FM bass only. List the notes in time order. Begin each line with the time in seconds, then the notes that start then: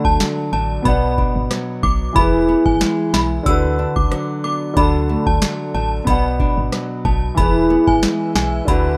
0.05 D2
0.53 A1
0.85 B1
1.35 G#1
1.83 B1
2.16 E1
2.66 G#1
3.14 B1
3.46 D2
3.96 C#2
4.77 D2
5.27 D2
5.75 A1
6.07 B1
6.57 G#1
7.05 B1
7.38 E1
7.87 G#1
8.35 B1
8.68 D2